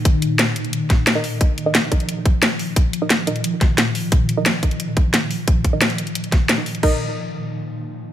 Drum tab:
CC |----------------|----------------|----------------|----------------|
HH |x-x-x-xxx-x-x-o-|x-x-x-xxx-x-x-o-|x-x-x-xxx-x-x-o-|x-x-x-xxx-x-x-o-|
SD |----o-----o-o---|----o-------o---|----o-----o-o---|----o-------o---|
BD |o---------o-----|o-----o---o-----|o---------o-----|o-----o---o-----|

CC |----------------|x---------------|
HH |x-x-xxxxxxx-x-ox|----------------|
SD |----o-----o-o---|----------------|
BD |o-o-------o-----|o---------------|